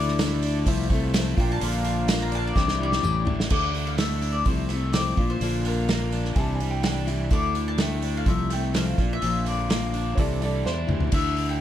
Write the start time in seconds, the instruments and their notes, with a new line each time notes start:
Already playing: fingered electric bass D2, steel-string acoustic guitar D3 A3 D4 E4, overdriven electric guitar D3, accordion E4 A4 D5 A5, mandolin D5
0.08 snare
0.19 steel-string acoustic guitar D3 A3 D4, snare, open hi-hat, tambourine
0.24 steel-string acoustic guitar E4
0.42 overdriven electric guitar D4, open hi-hat
0.66 fingered electric bass C2, steel-string acoustic guitar C3 F3 A3 C4 E4, accordion F4 C5 E5, kick, open hi-hat
0.89 steel-string acoustic guitar A3 C4 E4, kick, open hi-hat
1.14 steel-string acoustic guitar F3 A3 C4, snare, open hi-hat, tambourine
1.18 steel-string acoustic guitar E4
1.36 fingered electric bass A#1, overdriven electric guitar A#2, steel-string acoustic guitar A#3 D4 F4, accordion A#4 D5 F5, mandolin G5, kick, open hi-hat
1.52 mandolin A5
1.61 fingered electric bass A#1, steel-string acoustic guitar A#2 D3 A#3 D4 F4, open hi-hat
1.84 overdriven electric guitar F3, open hi-hat
2.07 steel-string acoustic guitar D3 A#3 D4 F4, snare, open hi-hat, tambourine
2.22 mandolin A#5
2.32 overdriven electric guitar D4, mandolin A5, open hi-hat
2.47 mandolin D5
2.55 fingered electric bass C2, steel-string acoustic guitar C3 E3 G3 D4 E4, accordion E4 C5 G5, kick, snare
2.68 snare
2.78 steel-string acoustic guitar G3 D4 E4
2.83 mandolin D5
2.92 snare
3.02 fingered electric bass A1, overdriven electric guitar A2, steel-string acoustic guitar E3 G3 D4 E4, accordion A4, mid tom, tambourine
3.25 overdriven electric guitar D3, steel-string acoustic guitar G3 D4 E4, floor tom
3.40 snare
3.49 fingered electric bass D2, steel-string acoustic guitar D3 A3 D4 E4, mandolin D5, kick, crash
3.74 overdriven electric guitar D3, open hi-hat
3.87 mandolin F5
3.98 steel-string acoustic guitar D3 A3 D4 E4, mandolin E5, snare, open hi-hat
4.22 overdriven electric guitar D4, open hi-hat
4.32 mandolin D5
4.45 fingered electric bass C2, steel-string acoustic guitar C3 F3 A3 C4 E4, mandolin C5, kick, open hi-hat
4.69 overdriven electric guitar A3, steel-string acoustic guitar C4 E4, mandolin E5, open hi-hat
4.74 steel-string acoustic guitar A3
4.93 steel-string acoustic guitar F3 A3, mandolin D5, snare, open hi-hat
4.97 steel-string acoustic guitar C4 E4
5.16 fingered electric bass A#1, overdriven electric guitar A#2, steel-string acoustic guitar D4 F4, kick, open hi-hat
5.21 steel-string acoustic guitar A#3
5.30 mandolin C5
5.41 fingered electric bass A#1, steel-string acoustic guitar A#2 D3 A#3 D4 F4, open hi-hat
5.65 overdriven electric guitar D3, mandolin A#4, open hi-hat
5.89 steel-string acoustic guitar D3 A#3 D4 F4, snare, open hi-hat
6.12 overdriven electric guitar D4, open hi-hat
6.25 snare
6.35 fingered electric bass C2, steel-string acoustic guitar C3 E3 G3 D4 E4, upright piano G#5, kick, open hi-hat
6.40 upright piano A5
6.55 upright piano G#5
6.60 steel-string acoustic guitar G3 D4 E4, open hi-hat
6.71 upright piano G5
6.83 steel-string acoustic guitar E3 G3 D4, upright piano F#5 G5, snare, open hi-hat
6.87 steel-string acoustic guitar E4
7.07 overdriven electric guitar E3, steel-string acoustic guitar G3 D4 E4, open hi-hat
7.30 fingered electric bass D2, steel-string acoustic guitar D3 A3 D4 E4, mandolin D5, kick, open hi-hat
7.55 overdriven electric guitar D3, open hi-hat
7.68 mandolin A5
7.78 steel-string acoustic guitar D3 A3 D4 E4, mandolin G5, snare, open hi-hat
8.02 overdriven electric guitar D4, open hi-hat
8.17 mandolin F5
8.26 fingered electric bass C2, steel-string acoustic guitar C3 F3 A3 C4 E4, mandolin E5, kick, open hi-hat
8.50 overdriven electric guitar A3, steel-string acoustic guitar C4 E4, mandolin G5, open hi-hat
8.55 steel-string acoustic guitar A3
8.74 steel-string acoustic guitar F3 A3 C4 E4, mandolin F5, snare, open hi-hat
8.98 fingered electric bass A#1, overdriven electric guitar A#2, steel-string acoustic guitar D4 F4, kick, open hi-hat
9.03 steel-string acoustic guitar A#3
9.13 mandolin E5
9.22 fingered electric bass A#1, steel-string acoustic guitar A#2 F3 A#3 D4 F4, open hi-hat
9.46 overdriven electric guitar D3, mandolin D5, open hi-hat
9.69 steel-string acoustic guitar F3 A#3 D4 F4, snare, open hi-hat
9.94 overdriven electric guitar D4, open hi-hat
10.15 fingered electric bass C2, steel-string acoustic guitar C3 E3 G3 D4, upright piano A4 C#5, kick, open hi-hat
10.20 steel-string acoustic guitar E4, upright piano D5
10.40 steel-string acoustic guitar G3 D4 E4, upright piano A4 D5, open hi-hat
10.64 fingered electric bass E2, steel-string acoustic guitar E3 G3 D4, upright piano C5, snare
10.68 steel-string acoustic guitar E4
10.87 fingered electric bass D2, overdriven electric guitar E3, steel-string acoustic guitar G3 D4 E4, mid tom
11.00 floor tom
11.12 fingered electric bass D2, steel-string acoustic guitar D3 A3 D4 E4, mandolin E5, kick, open hi-hat, crash
11.37 overdriven electric guitar D3, open hi-hat
11.49 mandolin G5